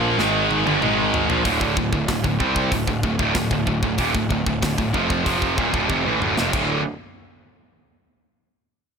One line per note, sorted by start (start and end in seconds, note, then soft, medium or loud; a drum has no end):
0.00 0.16 A#1 loud
0.00 0.17 A#2 medium
0.00 0.18 F3 medium
0.00 0.18 A#3 loud
0.18 0.62 G#1 medium
0.18 0.65 G#2 medium
0.18 0.65 D#3 loud
0.18 0.65 G#3 loud
0.18 snare medium
0.51 high tom medium
0.66 0.80 G1 medium
0.66 0.81 G2 medium
0.66 0.81 D3 medium
0.66 high tom medium
0.81 1.25 G#1 loud
0.81 1.28 G#2 loud
0.81 1.28 D#3 loud
0.81 1.28 G#3 loud
0.81 mid tom medium
1.14 floor tom medium
1.28 1.43 A#1 medium
1.28 1.44 A#2 medium
1.28 1.44 F3 loud
1.28 floor tom medium
1.44 1.74 D1 medium
1.44 1.75 D2 medium
1.44 1.76 A2 medium
1.44 1.76 D3 loud
1.44 kick medium
1.44 open hi-hat medium
1.61 kick medium
1.76 1.91 D1 medium
1.76 1.92 D2 medium
1.76 1.93 A2 medium
1.76 kick medium
1.92 2.07 D1 medium
1.92 2.08 D2 medium
1.92 2.08 A2 medium
1.92 kick medium
2.08 2.23 D1 medium
2.08 2.23 D2 medium
2.08 2.24 A2 medium
2.08 kick medium
2.08 snare loud
2.08 open hi-hat medium
2.24 2.39 D1 medium
2.24 2.40 D2 medium
2.24 2.40 A2 medium
2.24 kick medium
2.40 2.69 C2 medium
2.40 2.71 C3 medium
2.40 2.71 G3 medium
2.40 2.72 C4 medium
2.40 kick medium
2.56 kick medium
2.72 2.86 D1 medium
2.72 2.86 D2 medium
2.72 2.87 A2 medium
2.72 kick medium
2.72 open hi-hat medium
2.87 3.02 D1 medium
2.87 3.03 D2 medium
2.87 3.03 A2 medium
2.87 kick medium
3.03 3.18 D1 medium
3.03 3.18 D2 medium
3.03 3.20 A2 medium
3.03 kick medium
3.19 3.34 D1 medium
3.19 3.34 D2 medium
3.19 3.34 A2 loud
3.19 kick medium
3.35 3.50 D1 medium
3.35 3.49 D2 medium
3.35 3.50 A2 medium
3.35 kick medium
3.35 snare loud
3.35 open hi-hat medium
3.51 3.66 D1 medium
3.51 3.65 D2 medium
3.51 3.66 A2 medium
3.51 kick medium
3.66 3.82 D1 medium
3.66 3.81 D2 medium
3.66 3.82 A2 medium
3.66 kick medium
3.83 3.97 D1 medium
3.83 3.97 D2 medium
3.83 3.99 A2 medium
3.83 kick medium
3.98 4.13 D#1 medium
3.98 4.13 D#2 loud
3.98 4.14 A#2 loud
3.98 kick medium
3.98 open hi-hat medium
4.14 4.29 D1 medium
4.14 4.28 D2 medium
4.14 4.29 A2 medium
4.14 kick medium
4.29 4.45 D1 medium
4.29 4.45 D2 medium
4.29 4.45 A2 medium
4.29 kick medium
4.46 4.61 D1 medium
4.46 4.61 D2 medium
4.46 4.61 A2 medium
4.46 kick medium
4.62 4.77 D1 medium
4.62 4.77 D2 medium
4.62 4.77 A2 medium
4.62 kick medium
4.62 snare loud
4.62 open hi-hat medium
4.78 4.93 D1 medium
4.78 4.93 D2 medium
4.78 4.94 A2 medium
4.78 kick medium
4.93 5.24 F1 medium
4.93 5.24 F2 medium
4.93 5.25 C3 medium
4.93 5.25 F3 loud
4.93 kick medium
5.10 kick medium
5.25 5.56 F1 medium
5.25 5.56 F2 medium
5.25 5.57 C3 medium
5.25 5.57 F3 medium
5.25 kick medium
5.25 open hi-hat soft
5.42 kick medium
5.57 5.73 D#1 medium
5.57 5.72 D#2 medium
5.57 5.73 A#2 medium
5.57 kick medium
5.73 5.88 D1 medium
5.73 5.89 D2 medium
5.73 5.89 A2 medium
5.73 kick medium
5.90 6.05 F1 medium
5.90 6.05 F2 medium
5.90 6.05 C3 loud
5.90 kick medium
5.90 high tom medium
6.06 6.21 A1 medium
6.06 6.21 A2 medium
6.06 6.21 E3 medium
6.22 6.37 D1 medium
6.22 6.37 D2 medium
6.22 6.37 A2 medium
6.22 mid tom medium
6.38 6.53 F1 medium
6.38 6.53 F2 medium
6.38 6.53 C3 loud
6.38 snare medium
6.53 6.83 D1 medium
6.53 6.79 D2 medium
6.53 6.79 A2 loud
6.53 6.80 D3 loud
6.53 kick loud
6.53 crash medium